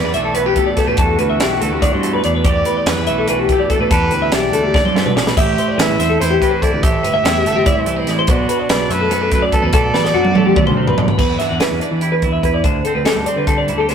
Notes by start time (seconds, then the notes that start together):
Already playing: E2 E3 B4 D5
0.03 E2 D4
0.14 B1 A3 E5, closed hi-hat
0.25 A4
0.35 B1 B3 B4, closed hi-hat
0.39 B4
0.46 D4 G4
0.56 B2 A3 A4, kick, closed hi-hat
0.66 D5
0.77 B3 G4 A4, kick, snare, closed hi-hat
0.87 A2 D4 B4
0.97 E2 D4 A4, kick, closed hi-hat
1.02 F#4
1.19 D2 B4, closed hi-hat
1.30 E5
1.40 B1 E3 D4 G4, snare, closed hi-hat
1.61 D2 A3 A4, closed hi-hat
1.71 D2 G4
1.82 D4 D5, kick, closed hi-hat
1.92 G2 C5
2.03 B2 A3, closed hi-hat
2.13 B4
2.24 E2 D4 D5, closed hi-hat
2.35 B4
2.44 E2 G4 D5, kick, closed hi-hat
2.65 B4, closed hi-hat
2.77 D5
2.86 E2 E3 B3 B4, snare, closed hi-hat
2.97 E2 D4
3.07 B1 A3 E5, closed hi-hat
3.18 A4
3.28 B1 D4 F#4 B4, closed hi-hat
3.39 G4
3.49 B2 A3 G4, kick, closed hi-hat
3.60 D5
3.70 D4 A4, kick, closed hi-hat
3.79 A2 B4
3.91 E2 G4 A4 B4, kick, closed hi-hat
4.11 D2 B4, closed hi-hat
4.22 E5
4.32 B1 E3 D4 G4 D5, snare, closed hi-hat
4.52 D2 A3 A4, closed hi-hat
4.63 D2 G4
4.74 D4 D5, kick, snare
4.84 G2 C5, high tom
4.95 B2 A3, snare
5.06 B4, mid tom
5.15 A#1 D4 D5, snare
5.27 B4, snare
5.37 A1 A2 E4 G4 E5, kick, closed hi-hat, splash
5.58 C5, closed hi-hat
5.68 D5
5.78 A1 E3 E4 B4 E5, snare, closed hi-hat
5.88 A1
5.99 E2 C4 E5, snare, closed hi-hat
6.09 A4
6.20 E2 E4 B4 C5, snare, closed hi-hat
6.31 G4
6.41 E3 C4 B4, kick, closed hi-hat
6.51 C5
6.62 E4 A4 D5, kick, closed hi-hat
6.72 D2 B4
6.82 A1 A2 G4 A4 E5, kick, closed hi-hat
7.03 G1 B4, closed hi-hat
7.14 E5
7.24 E2 E3 E4 G4, snare, closed hi-hat
7.45 G1 A3 A4, closed hi-hat
7.56 G1 C4 G4
7.66 E4 D5, kick, closed hi-hat
7.76 C2 C5
7.86 E3 A3, closed hi-hat
7.96 C4 B4
8.07 A1 E4 D5, snare, closed hi-hat
8.19 C5
8.27 B1 B2 D4 F#4 D5, kick, closed hi-hat
8.49 B4, closed hi-hat
8.59 D5
8.69 B1 F#3 D4 B4 D5, snare, closed hi-hat
8.80 B1
8.90 F#2 A3 B4 E5, closed hi-hat
9.01 A4
9.11 F#2 B3 B4, closed hi-hat
9.21 D4 A4
9.31 F#2 A3 B4, kick, closed hi-hat
9.42 D5
9.52 B3 A4, kick, closed hi-hat
9.62 E2 D4 B4
9.73 B1 B2 A4 D5, kick, closed hi-hat
9.94 A1 B4, snare
10.04 D5, snare
10.14 F#2 F#3 D4 F#4
10.25 high tom
10.35 A1 A3 A4, high tom
10.45 A1 G4
10.56 B2 D5, kick, mid tom
10.67 D2 C5, mid tom
10.77 C3
10.87 B4, floor tom
10.97 B1 D3 D5, floor tom
11.08 B4, floor tom
11.18 E2 B4, kick, crash
11.39 D4 E5, snare, closed hi-hat
11.49 E2 F#5
11.60 E3 B4, snare, closed hi-hat
11.71 E2
11.80 D4 D5, closed hi-hat
11.91 E3 B4
12.01 E4 G4, closed hi-hat
12.12 B4
12.22 E2 E4, kick, closed hi-hat
12.32 E5
12.43 E2 E4 B4, kick, closed hi-hat
12.54 D5
12.64 D2 D3 C5, kick, closed hi-hat
12.85 C4 A4, closed hi-hat
12.95 D2 B4
13.05 G3 A4, snare, closed hi-hat
13.16 D2
13.26 C4 D5, closed hi-hat
13.36 D3 B4
13.47 D4 A4, kick, closed hi-hat
13.58 D5
13.68 D2 E4, closed hi-hat
13.78 G4 A4
13.89 D2 B3 C5, snare, closed hi-hat